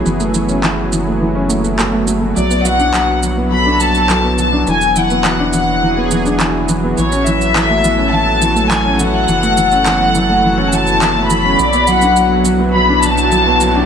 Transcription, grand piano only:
X:1
M:4/4
L:1/16
Q:1/4=104
K:Bdor
V:1 name="Grand piano" clef=bass
E, A, E, C E, z E, A, E, C A, A, A, A, A, A, | F, B, F, D F, z F, B, F, D F, z F, B, F, D | E, z E, B, E, D E, z E, B, E, D E, z E, B, | E, C E, z E, A, E, C E, z E, A, E, C E, z |
E, A, E, C E, z E, A, E, C E, z E, A, E, C | F, B, F, D F, z F, B, F, D F, z F, B, F, D |]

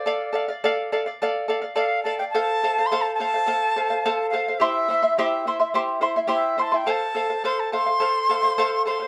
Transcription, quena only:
X:1
M:4/4
L:1/16
Q:1/4=106
K:F
V:1 name="Quena"
d2 z8 z2 f2 a g | a4 c' a a8 f2 | e4 e4 z4 e2 a g | a4 c' a c'8 c'2 |]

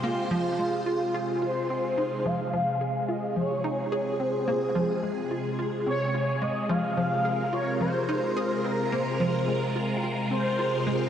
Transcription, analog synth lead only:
X:1
M:4/4
L:1/8
Q:1/4=108
K:Fm
V:1 name="Analog synth lead"
F4- F c3 | f3 e d3 c- | c2 z3 d2 e | f3 d c3 B |
c3 z2 c3 |]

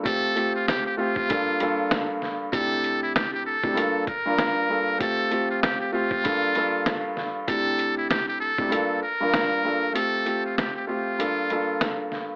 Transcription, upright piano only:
X:1
M:4/4
L:1/16
Q:"Swing 16ths" 1/4=97
K:Gdor
V:1 name="Upright piano"
[A,CFG]2 [A,CFG]4 [A,CFG]2 [G,,B,DFA]2 [G,,B,DFA]6 | [C,A,DEG]6 z [C,A,DEG] [G,,B,DFA]2 z [G,,B,DFB]3 [G,,B,DFA]2 | [A,CFG]2 [A,CFG]4 [A,CFG]2 [G,,B,DFA]2 [G,,B,DFA]6 | [C,A,DEG]6 z [C,A,DEG] [G,,B,DFA]2 z [G,,B,DFB]3 [G,,B,DFA]2 |
[A,CFG]2 [A,CFG]4 [A,CFG]2 [G,,B,DFA]2 [G,,B,DFA]6 |]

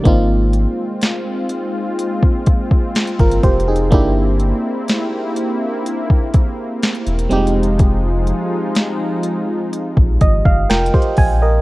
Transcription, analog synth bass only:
X:1
M:4/4
L:1/16
Q:1/4=62
K:Fdor
V:1 name="Analog synth bass" clef=bass
A,,,3 z8 z2 G,,, F,,,2 | G,,,3 z8 z2 =E,,, F,,,2- | F,,,3 z6 B,,, A,,, G,,, F,,, z B,,,2 |]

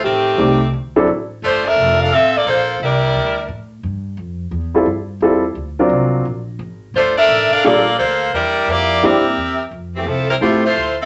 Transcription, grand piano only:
X:1
M:4/4
L:1/8
Q:"Swing" 1/4=174
K:Cmix
V:1 name="Grand piano"
z2 [G,A,C_EG] z2 [^F,CD=EA] z2 | z8 | z8 | z3 [G,CEFA] z2 [G,CEFA] z |
z [^F,CD^E^A]3 z4 | z4 [G,B,DFA] z3 | z4 [B,CDEG] z3 | [K:F] z4 [A,CEFG] z3 |]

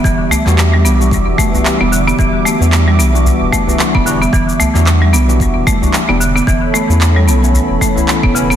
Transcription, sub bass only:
X:1
M:4/4
L:1/16
Q:"Swing 16ths" 1/4=112
K:Edor
V:1 name="Sub bass" clef=bass
E,,, z2 E,,3 B,,,2 z E,,, z3 E,,,2 z | E,,, z2 E,,3 B,,,2 z E,,, z3 E,,,2 z | E,,, z2 E,,3 B,,,2 z E,,, z3 E,,,2 z | E,,, z2 E,,3 B,,,2 z E,,, z3 E,,,2 z |]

